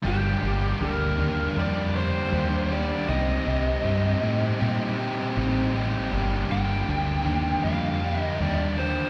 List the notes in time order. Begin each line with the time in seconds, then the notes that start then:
0.03 G1 G2 D3 G3 A#3 D4 G4
0.07 G4
0.41 G1 G2 D3 G3 A#3 D4 G4
0.81 D2 G2 D3 G3 A#3 D4 G4 A#4
1.18 D#2 G2 D3 G3 A#3 D4 G4
1.56 F2 G2 D3 G3 A#3 D4 G4
1.61 D5
1.94 G2 D3 G3 A#3 D4 G4 C5
2.31 D#2 G2 D3 G3 A#3 D4 G4
2.70 G2 D3 G3 A#3 D4 G4 D5
3.07 C2 C3 G3 C4 D#4 G4 D#5
3.45 C2 C3 G3 C4 D#4 G4
3.84 G2 C3 G3 C4 D#4 G4
4.22 A2 C3 G3 C4 D#4 G4
4.59 A#2 C3 G3 C4 D#4 G4
4.96 C3 G3 C4 D#4 G4
5.37 A1 C3 G3 C4 D#4 G4
5.74 C3 G3 C4 D#4 G4
6.11 G1 G2 D3 G3 A#3 D4 G4
6.49 G1 G2 D3 G3 A#3 D4 G4 G5
6.88 D2 G2 D3 G3 A#3 D4 G4
7.24 D#2 G2 D3 G3 A#3 D4 G4
7.64 F2 G2 D3 G3 A#3 D4 G4 F5
8.02 G2 D3 G3 A#3 D4 G4
8.22 D#5
8.39 D#2 G2 D3 G3 A#3 D4 G4 D5
8.78 G2 D3 G3 A#3 D4 G4 C5